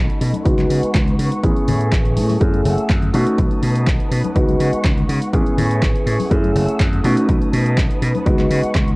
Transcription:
Already playing: A3 C#4 D#4 F#4 A4 D#5 B5
0.10 closed hi-hat
0.21 B2, open hi-hat
0.33 closed hi-hat, high conga, shaker
0.45 C#2 G#3 B3 D#4 F#4 B4 F#5 C#6, kick, closed hi-hat
0.59 clap, closed hi-hat, high conga
0.70 C#3, open hi-hat, shaker
0.83 muted slap bass stroke, closed hi-hat
0.94 C#2, kick, clap, closed hi-hat
1.07 closed hi-hat, low conga
1.18 C#3, open hi-hat, shaker
1.32 closed hi-hat
1.43 A1 A3 B3 C#4 E4 G#4 G#5, kick, closed hi-hat
1.56 closed hi-hat, high conga
1.68 A2, open hi-hat, low conga, shaker
1.80 closed hi-hat, shaker
1.92 A1, kick, clap, closed hi-hat
2.05 closed hi-hat
2.16 A2, open hi-hat
2.29 open hi-hat, high conga, shaker
2.40 F#2 A3 C#4 E4 G#4 F#5 E6, kick, closed hi-hat, shaker
2.53 closed hi-hat, high conga
2.65 F#1, open hi-hat, shaker
2.78 muted slap bass stroke, closed hi-hat
2.90 F#2, kick, clap, closed hi-hat
3.02 closed hi-hat, low conga
3.13 B2 A3 C#4 D#4 F#4 B4 A5 D#6, open hi-hat, shaker
3.27 closed hi-hat
3.38 B1, kick, closed hi-hat
3.51 closed hi-hat, high conga
3.63 B2, open hi-hat, shaker
3.76 closed hi-hat
3.87 B1, kick, clap, closed hi-hat
4.00 closed hi-hat
4.11 B2, open hi-hat
4.25 closed hi-hat, high conga, shaker
4.36 C#2 G#3 B3 D#4 F#4 F#5 C#6, kick, closed hi-hat, shaker
4.49 closed hi-hat, high conga
4.60 C#3, open hi-hat, shaker
4.73 muted slap bass stroke, closed hi-hat
4.85 C#2, kick, clap, closed hi-hat
4.98 closed hi-hat, low conga
5.09 C#3, open hi-hat, shaker
5.22 closed hi-hat
5.33 A1 A3 B3 C#4 E4 G#4 G#5 C#6, kick, closed hi-hat
5.46 closed hi-hat, high conga
5.57 A2, open hi-hat, low conga, shaker
5.71 closed hi-hat
5.82 A1, kick, clap, closed hi-hat
5.95 closed hi-hat
6.06 A2, open hi-hat
6.20 open hi-hat, high conga, shaker
6.30 F#2 A3 C#4 E4 G#4 F#5 E6, kick, closed hi-hat, shaker
6.44 closed hi-hat, high conga
6.55 F#1, open hi-hat
6.68 muted slap bass stroke, closed hi-hat
6.80 F#2, kick, clap, closed hi-hat
6.93 closed hi-hat, low conga
7.04 B2 A3 C#4 D#4 F#4 B4 A5 D#6, open hi-hat
7.17 closed hi-hat
7.29 B1, kick, closed hi-hat
7.42 closed hi-hat, high conga
7.53 B2, open hi-hat, shaker
7.66 closed hi-hat
7.77 B1, kick, clap, closed hi-hat
7.91 closed hi-hat
8.02 B2, open hi-hat
8.14 closed hi-hat, high conga, shaker
8.26 C#2 G#3 B3 D#4 F#4 F#5 C#6, kick, closed hi-hat
8.39 clap, closed hi-hat, high conga
8.51 C#3, open hi-hat, shaker
8.63 muted slap bass stroke, closed hi-hat
8.75 C#2, kick, clap, closed hi-hat
8.88 closed hi-hat, low conga

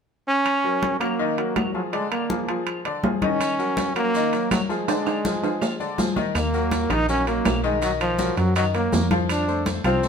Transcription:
0.28 C#4
0.46 high conga, high timbale, claves
0.64 F#3 F#4 A#4, high conga
0.83 high conga, high timbale, low timbale
1.00 F#3 A#3 F#4 A#4, high conga, high timbale, claves
1.19 D#3 D#4 D#5, high conga
1.38 F#3 F#4 A#4, high conga, high timbale
1.56 F#3, high conga, high timbale, low timbale, claves
1.74 F3 F#3 F4 G#4, high conga
1.93 D3 G#3 D4 D5, high conga, high timbale
2.11 A#3, high conga, high timbale, claves
2.30 F3 F4 G#4, high conga, low timbale
2.48 F3 F4 G#4, high timbale
2.67 high conga, high timbale, claves
2.85 D3 D4 D5, high conga, high timbale
3.03 F3 F4 G#4, high conga, low timbale
3.22 D#3 C#4 D#4 D#5, high conga, high timbale
3.40 high conga, high timbale, claves, maracas
3.59 F#3 F#4 A#4, high conga, maracas
3.77 high conga, high timbale, low timbale, maracas
3.96 F#3 A#3 F#4 A#4, high conga, high timbale, claves, maracas
4.14 D#3 D#4 D#5, high conga, maracas
4.33 F#3 F#4 A#4, high conga, high timbale, maracas
4.51 F#3, high conga, high timbale, low timbale, claves, maracas
4.69 F3 G#3 F4 G#4, high conga, maracas
4.88 D3 D4 D5, high conga, high timbale, maracas
5.06 high conga, high timbale, claves, maracas
5.25 F3 F4 G#4, high conga, maracas
5.43 F3 F4 G#4, high timbale, maracas
5.62 high conga, low timbale, claves, maracas
5.80 D3 D4 D5, high conga, maracas
5.98 F3 F4 G#4, high conga, low timbale, maracas
6.16 D#3 D#4 D#5, high conga, low timbale, maracas
6.35 D#2 A#3, high conga, high timbale, claves, maracas
6.53 F#3 F#4 A#4, high conga, maracas
6.71 high conga, high timbale, low timbale, maracas
6.90 A#1 D#3 D#4 D#5, high conga, high timbale, claves, maracas
7.09 F#3 C#4 F#4 A#4, high conga, maracas
7.27 F#3 A#3 F#4 A#4, high conga, high timbale, maracas
7.45 B1, high conga, high timbale, low timbale, claves, maracas
7.63 D#3 G#3 D#4 D#5, high conga, maracas
7.82 D#3 F#3 D#4 D#5, high conga, high timbale, maracas
8.00 F3, high conga, high timbale, claves, maracas
8.19 F#3 F#4 A#4, high conga, low timbale, maracas
8.37 F#2 F#3, high timbale, maracas
8.56 D#3 F#3 D#4 D#5, high conga, high timbale, claves, maracas
8.74 F#3 A#3 F#4 A#4, high conga, high timbale, maracas
8.92 F2, high conga, low timbale, maracas
9.11 F3 F4 F5, high conga, high timbale, maracas
9.29 D4, high conga, high timbale, claves, maracas
9.48 A3 A4 C5, high conga, maracas
9.66 high conga, high timbale, low timbale, maracas
9.84 C2 F3 C4 F4 F5, high conga, high timbale, claves, maracas
10.03 A3 A4 C5, high conga, maracas

